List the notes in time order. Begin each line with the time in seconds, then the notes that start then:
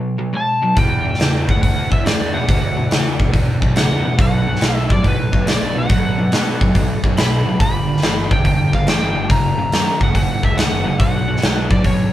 Already playing: B2 F#3
0.18 B2 F#3
0.33 B2 G#3 A5
0.62 B2 F#3
0.75 E2 B2 G#3 F4 G4 D#5 G5, kick, open hi-hat
0.91 F#3 G3 E4 D5
1.05 E2 B2
1.14 snare
1.19 E2 C#3, snare, open hi-hat
1.48 E2 B2 F#5, kick
1.56 D2
1.62 E2 B2 F#5, kick, open hi-hat
1.90 E2 B2 E5, kick
2.05 E2 C#3 D5, snare, open hi-hat
2.21 E2
2.34 E2 B2 F#5
2.48 D2 E2 B2, kick, open hi-hat
2.77 E2 B2
2.91 E2 C#3 E3, snare, open hi-hat
3.20 E2 B2, kick
3.28 E2
3.33 E2 B2, kick, open hi-hat
3.62 B1 E2 B2, kick
3.76 E2 C#3 F#5, snare, open hi-hat
3.91 E2
4.05 E2 B2
4.18 B1 B2 F#3 B3 D4 A4 C#5 F#5, kick, open hi-hat
4.47 B2 F#3
4.56 snare
4.61 B1 B2 G#3, snare, open hi-hat
4.76 E5
4.90 B2 F#3 D5, kick
4.97 A1
5.03 B2 F#3, kick, open hi-hat
5.08 B4
5.32 B1 B2 F#3, kick
5.46 B2 G#3 D5, snare, open hi-hat
5.61 B1
5.76 B2 F#3 F#5
5.89 A1 B2 F#3, kick, open hi-hat
6.18 B2 F#3
6.32 B2 G#3, snare, open hi-hat
6.61 B2 F#3, kick
6.68 B1
6.75 B2 F#3, kick, open hi-hat
7.04 F#2 B2 F#3, kick
7.17 B1 B2 G#3 B5, snare, open hi-hat
7.46 A1 B2 F#3
7.59 G1 G2 D3 C4 F#4 G#4 D#5 B5, kick, open hi-hat
7.74 B3 F4 G4 D5
7.88 G2 D3
7.97 snare
8.02 G1 G2 E3, snare, open hi-hat
8.31 G2 D3 G5, kick
8.39 F1
8.44 G2 D3 G5, kick, open hi-hat
8.72 G1 G2 D3 F5, kick
8.87 G2 E3 G5, snare, open hi-hat
9.02 G1
9.15 G2 D3
9.29 F#1 F#2 C#3 A#3 F#4 G4 E5 A#5, kick, open hi-hat
9.58 F#2 C#3
9.72 F#2 D#3, snare, open hi-hat
10.01 F#2 C#3 F#5, kick
10.08 F#1
10.15 F#2 C#3 F#5, kick, open hi-hat
10.43 C#2 F#2 C#3 E5, kick
10.57 F#2 D#3 F#5, snare, open hi-hat
10.72 F#1
10.85 F#2 C#3
10.98 B1 B2 F#3 B3 D4 A4 C#5 F#5, kick, open hi-hat
11.28 B2 F#3
11.37 snare
11.42 B1 B2 G#3, snare, open hi-hat
11.70 B2 F#3 D5, kick
11.77 A1
11.84 B2 F#3 C#5, kick, open hi-hat